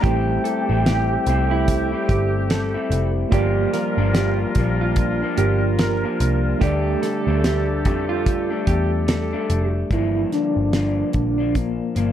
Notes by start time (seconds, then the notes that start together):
0.01 A1 A2 G3 A3 C4 E4 G4 G5, kick, closed hi-hat
0.06 C4 E4 C5
0.44 A4, closed hi-hat
0.69 A1 A2 G3 C4 E4
0.86 G4, snare, closed hi-hat
1.26 C2 A2 G3 C4 E4, closed hi-hat
1.51 E4
1.68 kick, closed hi-hat
1.92 G3 C4 E4
2.09 G1 G4, kick, closed hi-hat
2.50 A4, snare, closed hi-hat
2.74 G3 C4 E4
2.90 F1, closed hi-hat
3.29 G1 G2 F3 G3 A#3 D4 F4 G4 A#4, kick, closed hi-hat
3.33 A#3 D4 D5
3.73 A#4, snare, closed hi-hat
3.98 G1 G2 F3 A#3 D4
4.14 G4, snare, closed hi-hat
4.55 A#1 G2 F3 A#3 D4, kick, closed hi-hat
4.81 F4
4.96 kick, closed hi-hat
5.22 F3 A#3 D4
5.36 G1 A#3 F4 G4 A#4, closed hi-hat
5.79 A#4, snare, closed hi-hat
6.04 F3 A#3 D4
6.20 C2, closed hi-hat
6.59 D2 D3 G3 A3 D4 G4 A4, kick, closed hi-hat
6.63 A3 D4 D5
7.02 A4, snare, closed hi-hat
7.27 D2 D3 G3 A3 D4
7.44 G4, snare, closed hi-hat
7.84 F2 D3 G3 A3 D4, kick, closed hi-hat
8.09 F4
8.26 kick, closed hi-hat
8.50 G3 A3 D4
8.67 E2 G4, kick, closed hi-hat
9.08 A4, snare, closed hi-hat
9.33 G3 A3 D4
9.50 F1, closed hi-hat
9.91 G1 G2 F3 A#3 D4 E4, kick, closed hi-hat
10.32 D4, snare, closed hi-hat
10.57 G1
10.72 G2 F3 A#3 D4, snare, closed hi-hat
11.13 A#1 D4, kick, closed hi-hat
11.38 F3 A#3 D4
11.55 A#3, kick, closed hi-hat
11.95 G1 G2 F3 A#3 D4, closed hi-hat